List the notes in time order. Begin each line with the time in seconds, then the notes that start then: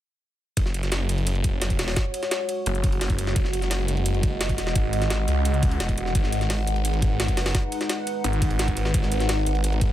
0.57 F#1 G#3 F#4 C#5 F#5, kick, closed hi-hat, ride
0.66 snare
0.74 closed hi-hat, ride
0.83 snare, closed hi-hat
0.92 snare, closed hi-hat, open hi-hat
1.09 F#1, closed hi-hat, ride
1.18 ride
1.27 closed hi-hat, ride
1.35 ride
1.44 kick, closed hi-hat, ride
1.62 F#1, snare, closed hi-hat, ride
1.70 kick, closed hi-hat, ride
1.79 E1, snare, closed hi-hat, open hi-hat
1.88 snare, open hi-hat
1.96 kick, snare, closed hi-hat, open hi-hat
2.14 closed hi-hat, ride
2.23 snare, closed hi-hat
2.31 snare, closed hi-hat, ride
2.49 closed hi-hat, ride
2.66 F#1, closed hi-hat, ride
2.75 closed hi-hat
2.84 kick, closed hi-hat, ride
2.92 ride
3.01 snare, closed hi-hat, open hi-hat
3.10 kick, closed hi-hat
3.19 closed hi-hat, ride
3.27 snare
3.36 F#1 D#5, kick, closed hi-hat, ride
3.45 snare
3.53 closed hi-hat, ride
3.62 snare, closed hi-hat
3.71 snare, closed hi-hat, open hi-hat
3.88 F#1, closed hi-hat, ride
3.97 ride
4.06 closed hi-hat, ride
4.14 ride
4.23 kick, closed hi-hat, ride
4.41 F#1, snare, closed hi-hat, ride
4.49 kick, closed hi-hat, ride
4.58 E1, snare, closed hi-hat, ride
4.67 snare
4.75 G#1, kick, closed hi-hat, ride
4.93 closed hi-hat, ride
5.02 snare, closed hi-hat
5.10 snare, closed hi-hat, ride
5.28 C#2, closed hi-hat, ride
5.45 closed hi-hat, ride
5.54 closed hi-hat
5.63 kick, closed hi-hat, ride
5.71 ride
5.80 E1, snare, closed hi-hat, ride
5.89 kick, closed hi-hat, ride
5.98 closed hi-hat, ride
6.06 snare
6.15 G#1 D#4 B4, kick, closed hi-hat, ride
6.24 snare
6.32 closed hi-hat, ride
6.41 snare, closed hi-hat
6.50 snare, closed hi-hat, open hi-hat
6.67 G#1, closed hi-hat, ride
6.76 ride
6.85 closed hi-hat, ride
6.94 ride
7.02 kick, closed hi-hat, ride
7.20 G#1, snare, closed hi-hat, ride
7.28 kick, closed hi-hat, ride
7.37 F#1, snare, closed hi-hat, open hi-hat
7.46 snare, open hi-hat
7.55 kick, snare, closed hi-hat, open hi-hat
7.72 closed hi-hat, ride
7.81 snare, closed hi-hat
7.89 snare, closed hi-hat, ride
8.07 closed hi-hat, ride
8.24 G#1, closed hi-hat, ride
8.33 closed hi-hat
8.42 kick, closed hi-hat, ride
8.51 ride
8.59 snare, closed hi-hat, open hi-hat
8.68 kick, closed hi-hat
8.77 closed hi-hat, ride
8.85 snare
8.94 G#1, kick, closed hi-hat, ride
9.03 snare
9.12 closed hi-hat, ride
9.20 snare, closed hi-hat
9.29 snare, closed hi-hat, open hi-hat
9.46 G#1, closed hi-hat, ride
9.55 ride
9.64 closed hi-hat, ride
9.73 ride
9.81 kick, closed hi-hat, ride